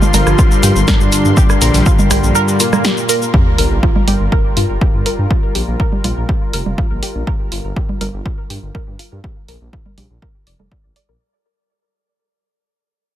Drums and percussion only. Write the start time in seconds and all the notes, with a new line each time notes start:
0.02 low conga, shaker
0.14 open hi-hat, low conga, shaker
0.27 cross-stick, shaker
0.39 kick, shaker
0.51 shaker
0.63 open hi-hat, shaker
0.76 shaker
0.88 kick, cross-stick, snare, shaker
1.01 shaker
1.12 open hi-hat, shaker
1.25 shaker
1.37 kick, shaker
1.50 cross-stick, shaker
1.62 open hi-hat, shaker
1.74 open hi-hat, shaker
1.86 kick, shaker
1.99 low conga, shaker
2.11 cross-stick, open hi-hat, low conga, shaker
2.24 shaker
2.35 shaker
2.48 shaker
2.60 open hi-hat, shaker
2.73 cross-stick, low conga, shaker
2.85 snare, shaker
2.97 shaker
3.09 open hi-hat, shaker
3.22 shaker
3.34 kick
3.58 open hi-hat
3.83 kick
3.96 low conga
4.08 open hi-hat, low conga
4.32 kick
4.57 open hi-hat
4.81 kick
5.06 open hi-hat
5.31 kick
5.55 open hi-hat
5.80 kick
5.92 low conga
6.04 open hi-hat, low conga
6.29 kick
6.53 open hi-hat
6.66 low conga
6.78 kick
7.03 open hi-hat
7.27 kick
7.52 open hi-hat
7.76 kick
7.89 low conga
8.01 open hi-hat, low conga
8.26 kick
8.50 open hi-hat
8.75 kick
8.99 open hi-hat
9.24 kick
9.48 open hi-hat
9.73 kick
9.86 low conga
9.98 open hi-hat, low conga
10.22 kick
10.47 open hi-hat
10.60 low conga
10.72 kick
10.96 open hi-hat